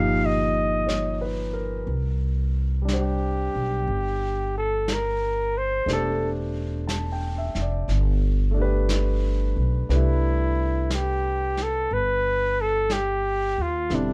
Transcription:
Already playing: upright bass G1, grand piano A#2 F3 D#4 G4, flugelhorn F5
0.26 flugelhorn D#5
0.87 grand piano C#5, brush sweep, snare, hi-hat pedal
1.21 grand piano B4
1.53 grand piano A#4
1.87 upright bass C2, brush sweep
2.82 grand piano G3 D4
2.88 grand piano G4, flugelhorn G4, brush sweep, snare, hi-hat pedal
2.93 grand piano C5
3.55 upright bass B1
3.87 upright bass G1, brush sweep
4.58 flugelhorn A4
4.88 brush sweep, snare, hi-hat pedal
4.92 flugelhorn A#4
5.58 flugelhorn C5
5.86 upright bass E1, grand piano A3 D4 G4, brush sweep, snare
5.91 flugelhorn A4, grand piano C5
6.87 grand piano A5, brush sweep, snare, hi-hat pedal
7.12 grand piano G5
7.38 grand piano E5
7.55 upright bass F1, snare
7.61 grand piano D5
7.88 upright bass G1, brush sweep, snare
8.51 grand piano A3 D4
8.58 grand piano G4 B4
8.89 brush sweep, snare, hi-hat pedal
9.57 upright bass B1
9.89 upright bass C2, grand piano A3 D4 G4 B4, brush sweep, snare
9.96 flugelhorn E4
10.90 flugelhorn G4, brush sweep, snare, hi-hat pedal
11.57 snare
11.62 flugelhorn A4
11.90 upright bass G1, flugelhorn B4, brush sweep
12.61 flugelhorn A4
12.90 flugelhorn G4, brush sweep, snare, hi-hat pedal
13.58 upright bass D#2, flugelhorn F4
13.90 upright bass E1, grand piano D3 G3 C4 E4, brush sweep, snare
13.95 flugelhorn D4

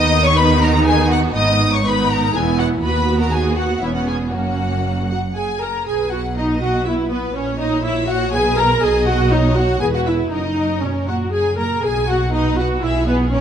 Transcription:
Already playing: double bass section D#2, cello section D#3, viola section B3 D#4, violin section D#5 D#6
0.24 violin section C#5 C#6
0.36 viola section B3 D#4, violin section B4 B5
0.62 violin section A#4 A#5
0.86 violin section G#4 G#5
1.10 violin section F#4 F#5
1.35 double bass section G#1, cello section G#2, viola section B3 D#4, violin section D#5 D#6
1.72 violin section C#5 C#6
1.84 viola section B3 D#4, violin section B4 B5
2.10 violin section A#4 A#5
2.33 double bass section E1, cello section E2, viola section B3 E4, violin section G#4 G#5
2.58 violin section F#4 F#5
2.83 double bass section D#2, cello section D#2, viola section B3 F#4, violin section B4 B5
3.20 violin section A#4 A#5
3.32 violin section G#4 G#5
3.57 violin section F#4 F#5
3.82 double bass section E1, cello section E2, viola section B3 C#4, violin section E4 E5
3.95 violin section F#4 F#5
4.07 violin section G#4 G#5
4.34 double bass section F#1, cello section F#2, viola section A#3 C#4, violin section F#4 F#5
5.10 viola section F#4, violin section F#5
5.36 viola section G#4, violin section G#5
5.62 viola section A#4, violin section A#5
5.87 double bass section B1, cello section B2, viola section G#4, violin section B4 G#5
6.11 viola section F#4, violin section F#5
6.37 viola section D#4, violin section D#5
6.62 viola section F#4, violin section F#5
6.86 viola section E4, violin section B4 E5
7.11 viola section B3, violin section B4
7.36 double bass section A#1, cello section A#2, viola section C#4, violin section C#5
7.60 viola section D#4, violin section D#5
7.85 viola section E4, violin section C#5 E5
8.09 viola section F#4, violin section F#5
8.33 double bass section B1, cello section B2, viola section G#4, violin section B4 G#5
8.57 viola section A#4, violin section A#5
8.82 double bass section B1, cello section B2, viola section G#4, violin section D#5 G#5
9.06 viola section F#4, violin section F#5
9.31 viola section D#4, violin section C#5 D#5
9.56 viola section F#4, violin section F#5
9.81 double bass section E1, cello section E2, viola section G#4, violin section B4 G#5
9.94 viola section F#4, violin section F#5
10.06 viola section E4, violin section E5
10.32 double bass section F#1, cello section F#2, viola section D#4, violin section A#4 D#5
10.82 cello section B2, viola section C#4, violin section C#5
11.08 cello section A#2, viola section F#4, violin section F#5
11.33 cello section F#2, viola section G#4, violin section G#5
11.58 cello section A#2, viola section A#4, violin section A#5
11.84 double bass section B1, cello section B2, viola section G#4, violin section G#5
12.09 viola section F#4, violin section F#5
12.33 viola section D#4, violin section B4 D#5
12.59 viola section F#4, violin section F#5
12.83 double bass section B1, cello section B2, viola section E4, violin section G#4 E5
13.07 viola section B3, violin section B4
13.32 double bass section A#1, cello section A#2, viola section C#4, violin section A#4 C#5

